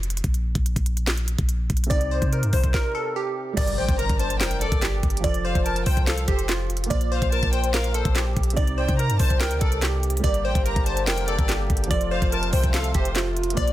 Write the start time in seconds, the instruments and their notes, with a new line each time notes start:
Already playing: 808-style bass F1
0.03 closed hi-hat
0.10 closed hi-hat
0.17 closed hi-hat
0.24 808-style bass A#1, kick, closed hi-hat
0.34 closed hi-hat
0.55 808-style bass A#1, kick, closed hi-hat
0.66 closed hi-hat
0.76 808-style bass A#1, kick, closed hi-hat
0.86 closed hi-hat
0.97 closed hi-hat
1.07 snare, clap, closed hi-hat
1.17 closed hi-hat
1.28 closed hi-hat
1.39 808-style bass A#1, kick, closed hi-hat
1.49 closed hi-hat
1.70 808-style bass A#1, kick, closed hi-hat
1.77 closed hi-hat
1.84 felt piano C3, closed hi-hat
1.89 808-style bass C2, felt piano C4 D#4, synth pluck D5, kick, closed hi-hat
1.95 felt piano D5
2.01 closed hi-hat
2.11 synth pluck C5
2.22 808-style bass C3, kick, closed hi-hat
2.33 synth pluck A#4, closed hi-hat
2.43 808-style bass G2, closed hi-hat
2.53 808-style bass C2, synth pluck C5, kick, open hi-hat
2.64 kick, closed hi-hat
2.74 synth pluck A#4, kick, snare
2.95 synth pluck A4
3.16 synth pluck G4
3.53 felt piano G3 G4, synth pluck D5
3.57 808-style bass G1, felt piano A#4, kick, closed hi-hat, crash, impact
3.62 felt piano D5
3.67 closed hi-hat
3.78 808-style bass A1, synth pluck C5, violin section G5
3.89 808-style bass G1, kick, closed hi-hat
3.99 synth pluck A#4, violin section A#5, closed hi-hat
4.09 808-style bass G1, kick, closed hi-hat
4.19 synth pluck C5, violin section A5, closed hi-hat
4.30 closed hi-hat
4.40 808-style bass F1, synth pluck A#4, violin section G5, snare, clap, closed hi-hat
4.51 closed hi-hat
4.61 synth pluck A4, violin section D5, closed hi-hat
4.72 808-style bass G1, kick, closed hi-hat
4.82 synth pluck G4, snare, clap, closed hi-hat
5.03 808-style bass G1, kick, closed hi-hat
5.10 closed hi-hat
5.17 felt piano F3, closed hi-hat
5.23 808-style bass F1, felt piano F4 A4, synth pluck D5, kick, closed hi-hat
5.29 felt piano C5
5.34 closed hi-hat
5.45 synth pluck C5, violin section F5
5.55 808-style bass F1, kick, closed hi-hat
5.66 synth pluck A#4, violin section A5, closed hi-hat
5.76 closed hi-hat
5.86 808-style bass C2, synth pluck C5, violin section G5, kick, open hi-hat
5.97 kick, closed hi-hat
6.07 synth pluck A4, violin section F5, snare, clap, closed hi-hat
6.17 closed hi-hat
6.28 808-style bass F1, synth pluck G4, violin section C5, kick, closed hi-hat
6.39 closed hi-hat
6.49 synth pluck F4, snare, clap, closed hi-hat
6.70 closed hi-hat
6.77 closed hi-hat
6.84 felt piano A#3, closed hi-hat
6.89 808-style bass A#1, felt piano F4 C5, synth pluck D5, kick, closed hi-hat
6.95 felt piano D5
7.01 closed hi-hat
7.12 synth pluck C5, violin section F5
7.22 808-style bass A#1, kick, closed hi-hat
7.32 synth pluck A#4, violin section A5, closed hi-hat
7.43 808-style bass A#1, kick, closed hi-hat
7.53 synth pluck C5, violin section G5, closed hi-hat
7.64 closed hi-hat
7.74 synth pluck A#4, violin section F5, snare, clap, closed hi-hat
7.84 closed hi-hat
7.94 synth pluck A4, violin section C5, closed hi-hat
8.05 808-style bass A#1, kick, closed hi-hat
8.15 synth pluck G4, snare, clap, closed hi-hat
8.37 808-style bass A#1, kick, closed hi-hat
8.43 closed hi-hat
8.50 felt piano C3, closed hi-hat
8.56 808-style bass C2, felt piano C4 D#4, synth pluck D5, kick, closed hi-hat
8.62 felt piano D5
8.67 closed hi-hat
8.78 synth pluck C5, violin section G5
8.89 808-style bass C3, kick, closed hi-hat
8.99 synth pluck A#4, violin section A#5, closed hi-hat
9.09 808-style bass G2, closed hi-hat
9.19 808-style bass C2, synth pluck C5, violin section A5, kick, open hi-hat
9.30 kick, closed hi-hat
9.40 synth pluck A#4, violin section G5, snare, clap, closed hi-hat
9.51 808-style bass D2, closed hi-hat
9.61 808-style bass C2, synth pluck A4, violin section D5, kick, closed hi-hat
9.72 closed hi-hat
9.82 synth pluck G4, snare, clap, closed hi-hat
10.03 closed hi-hat
10.10 closed hi-hat
10.17 felt piano G3, closed hi-hat
10.23 808-style bass G1, harmonium D3 A#3 G4, felt piano G4 A#4, synth pluck D5, kick, closed hi-hat
10.29 felt piano D5
10.34 closed hi-hat
10.45 808-style bass A1, synth pluck C5, violin section G5
10.55 808-style bass G1, kick, closed hi-hat
10.66 synth pluck A#4, violin section A#5, closed hi-hat
10.76 808-style bass G1, kick, closed hi-hat
10.86 synth pluck C5, violin section A5, closed hi-hat
10.97 closed hi-hat
11.07 808-style bass F1, synth pluck A#4, violin section G5, snare, clap, closed hi-hat
11.18 closed hi-hat
11.28 synth pluck A4, violin section D5, closed hi-hat
11.39 808-style bass G1, kick, closed hi-hat
11.48 synth pluck G4, snare, clap, closed hi-hat
11.70 808-style bass G1, kick, closed hi-hat
11.77 closed hi-hat
11.84 felt piano F3, closed hi-hat
11.89 808-style bass F1, harmonium C3 A3 F4, felt piano F4 A4, synth pluck D5, kick, closed hi-hat
11.95 felt piano C5
12.01 closed hi-hat
12.11 synth pluck C5, violin section F5
12.22 808-style bass F1, kick, closed hi-hat
12.32 synth pluck A#4, violin section A5, closed hi-hat
12.43 closed hi-hat
12.53 808-style bass C2, synth pluck C5, violin section G5, kick, open hi-hat
12.64 kick, closed hi-hat
12.74 synth pluck A4, violin section F5, snare, clap, closed hi-hat
12.84 closed hi-hat
12.94 808-style bass F1, synth pluck G4, violin section C5, kick, closed hi-hat
13.05 closed hi-hat
13.15 synth pluck F4, snare, clap, closed hi-hat
13.37 closed hi-hat
13.43 closed hi-hat
13.50 felt piano A#3, closed hi-hat
13.56 808-style bass A#1, harmonium A#3 D5, felt piano F4 C5, synth pluck D5, kick, closed hi-hat
13.62 felt piano D5
13.68 closed hi-hat